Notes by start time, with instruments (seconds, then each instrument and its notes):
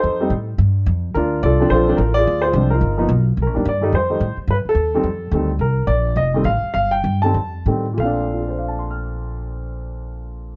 Already playing: grand piano D#4 A4 C5
0.03 upright bass F2
0.20 grand piano G3 A3 C4 D#4
0.30 upright bass A2
0.58 upright bass G2
0.86 upright bass F2
1.14 upright bass D2, grand piano D4 F4 A#4
1.43 upright bass C2, grand piano F4 A4 D5
1.60 grand piano F3 A3 C4 D4
1.70 upright bass A#1, grand piano A4 C5
1.74 grand piano F4
1.87 grand piano F3 A3 C4 D4
1.97 upright bass A1, grand piano A#4
2.14 grand piano F4 D5
2.18 grand piano G#4
2.27 upright bass D2
2.42 grand piano F4 C5
2.46 grand piano G#4
2.53 upright bass C2, grand piano F3 G#3 C4 D4
2.70 grand piano D#4 A#4
2.74 grand piano F4
2.81 upright bass G1
2.97 grand piano F3 A#3 B3 D#4
3.09 upright bass B1
3.37 upright bass C2
3.42 upright bass A#1, grand piano A#4
3.54 upright bass G1, grand piano D#3 G3 A#3 D4
3.65 upright bass G2, grand piano D5
3.81 grand piano D#3 G3 A3 D#4
3.92 upright bass F2, grand piano C5
4.10 grand piano D#3 G3 A3 D#4
4.20 upright bass A2
4.37 muted upright bass stroke
4.47 upright bass G2, grand piano B4
4.65 grand piano A4, muted upright bass stroke
4.75 upright bass D#2
4.95 grand piano D#3 G3 A3 C4
5.04 upright bass F2
5.31 upright bass D2, grand piano D#3 G3 A3 C4
5.59 upright bass C2, grand piano A#4
5.87 upright bass A#1, grand piano D5
6.16 upright bass F1, grand piano D#5
6.34 grand piano D#3 G3 A3 C4
6.44 upright bass A1, grand piano F5
6.63 muted upright bass stroke
6.74 upright bass G1, grand piano F5
6.91 grand piano G5
7.04 upright bass G2
7.22 grand piano D#3 G3 A3 C4 A5
7.34 upright bass F2
7.66 upright bass A2, grand piano D#3 G3 A3 C4
7.93 grand piano A#2
7.97 upright bass A#1, grand piano A3 C4 F5
8.05 grand piano D4
8.34 grand piano F4
8.41 grand piano A4
8.49 grand piano C5
8.58 grand piano F5
8.68 grand piano A5
8.79 grand piano C6
8.90 grand piano F6